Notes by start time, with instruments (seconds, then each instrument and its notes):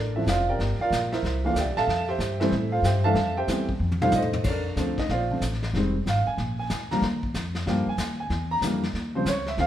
Already playing: upright bass A1, grand piano D4 A4 A#4 D5
0.16 grand piano F3 A3 C4 D4 E4 E5
0.26 upright bass F1, grand piano F4 C5 D5 F5, snare, hi-hat pedal
0.49 grand piano G4 A#4 D5 G5
0.59 upright bass G1, brush sweep, snare
0.79 grand piano F4 A#4 D5 F5, muted upright bass stroke
0.91 upright bass A#1, snare, hi-hat pedal
1.12 grand piano E4 A#4 C5 E5, snare
1.23 upright bass C2, brush sweep, snare
1.45 grand piano E3 A3 A#3 D4 F4 F5
1.55 upright bass D2, grand piano D5, snare, hi-hat pedal
1.59 grand piano G4 E5 G5
1.65 upright bass C2
1.76 upright bass A#1, grand piano A4 E5 F5 A5, snare
1.87 upright bass F2, brush sweep, snare
2.08 grand piano G4 C5 E5 G5
2.19 upright bass G2, snare, hi-hat pedal
2.40 grand piano E3 G3 A3 C4 E4 A4 C5 E5, snare
2.52 upright bass A2, brush sweep, snare
2.72 grand piano F4 A4 C5 F5
2.82 upright bass G2, grand piano G4 C5 E5 G5, snare, hi-hat pedal
3.04 grand piano E3 G3 A3 D4 A4 E5 F5 A5
3.15 upright bass F2, brush sweep, snare
3.37 grand piano G4 C5 E5 G5
3.48 upright bass E2, grand piano E3 G3 A3 C4, snare, hi-hat pedal
3.69 kick
3.80 upright bass F2
3.92 high tom
4.01 grand piano D#3 G3 A3 D4 F4 A4 C5 F5, mid tom
4.12 upright bass A2, grand piano A4, hi-hat pedal, mid tom
4.16 grand piano D#4 C5 D#5
4.22 floor tom
4.33 floor tom
4.44 upright bass F2, grand piano C#5, brush sweep, kick, snare, crash
4.49 grand piano D4 A4 A#4 D5
4.76 upright bass D2, grand piano D3 F3 A3 C4, snare, hi-hat pedal
4.98 grand piano D#4 D#5, kick, snare
5.09 upright bass A#1, grand piano F4 C5 D5 F5, brush sweep, snare
5.30 grand piano D3 F3 A3 C4
5.41 upright bass A1, snare, hi-hat pedal
5.53 snare
5.63 snare
5.73 upright bass F1, grand piano D#3 G3 G#3 C4, brush sweep, snare
6.06 upright bass G#1, grand piano F5, snare, hi-hat pedal
6.27 grand piano G#5, muted upright bass stroke
6.38 upright bass A#1, brush sweep, snare
6.59 grand piano G#5
6.70 upright bass D2, snare, hi-hat pedal
6.91 grand piano D3 F3 G3 A#3 A#5, snare
7.02 upright bass D#2, brush sweep, snare
7.23 kick
7.34 upright bass F2, snare, hi-hat pedal
7.55 snare
7.66 upright bass G2, grand piano D3 F3 G3 A#3 G5, brush sweep, snare
7.86 grand piano G#5, muted upright bass stroke
7.98 upright bass D#2, snare, hi-hat pedal
8.20 grand piano G#5
8.30 upright bass E2, brush sweep, snare
8.51 grand piano A#5
8.61 upright bass F2, grand piano D3 E3 G3 A#3, snare, hi-hat pedal
8.83 snare
8.93 upright bass D#2, brush sweep, snare
9.15 grand piano C#3 F3 G3 C4 C5
9.25 upright bass C#2, grand piano C#5, snare, hi-hat pedal
9.46 grand piano E5, snare
9.58 upright bass D2, grand piano D3 F3 A3 C4 F5, brush sweep, snare